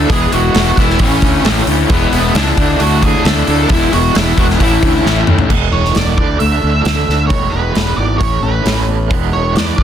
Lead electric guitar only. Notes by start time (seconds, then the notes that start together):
0.10 G#4 G#5
0.34 F#4 F#5
0.79 E4 E5
1.01 C#4 C#5
1.48 B4
1.91 B3 B4
2.35 D4 D5
2.80 F#4 F#5
3.02 G#4 G#5
3.24 A4 A5
3.70 E4 E5
3.93 F#4 F#5
4.16 E4 E5
4.38 F#4 F#5
4.63 E4 E5
5.72 C#5
5.96 D5
6.18 D5
6.39 E5
6.82 E5
7.27 C#5
7.50 B4
7.97 D5
8.18 C#5
8.43 B4
9.33 C#5
9.56 D5
9.78 E5